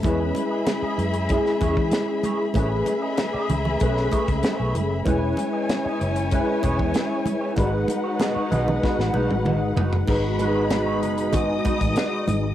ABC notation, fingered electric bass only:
X:1
M:4/4
L:1/16
Q:1/4=96
K:G#phr
V:1 name="Fingered electric bass" clef=bass
E,,2 z4 F,,3 z E,, E, z4 | A,,,2 z4 C,,2 B,,,2 z C,, z B,,, F,,,2 | E,,,2 z4 F,,,3 z E,,, E,, z4 | G,,,2 z4 B,,,2 z A,,, B,,, A,,,2 G,,, F,,,2 |
G,,,6 F,,,2 G,,,2 z A,,, z2 G,,,2 |]